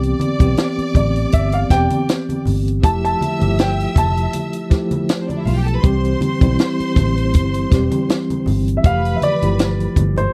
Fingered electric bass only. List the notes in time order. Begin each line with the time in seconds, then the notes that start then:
Already playing: C2
0.40 B1
0.78 muted fingered electric bass stroke
0.95 A1
1.33 G1
1.70 E1
2.46 G1
2.84 F1
3.42 G1
3.96 F1
5.46 B1
5.84 C2
6.41 B1
6.80 muted fingered electric bass stroke
6.96 A1
7.35 G1
7.72 E1
8.47 G1
8.84 F1
9.42 G1
9.96 G1